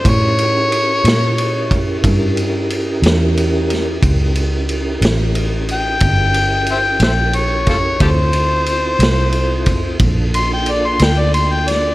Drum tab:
RD |xxxxxxxxxxxx|xxxxxxxxxxxx|xxxxxxxxxxxx|
SD |---o-----o-o|---o-----o-o|---o-----o-o|
BD |o----oo-----|o-----o----o|o----oo-----|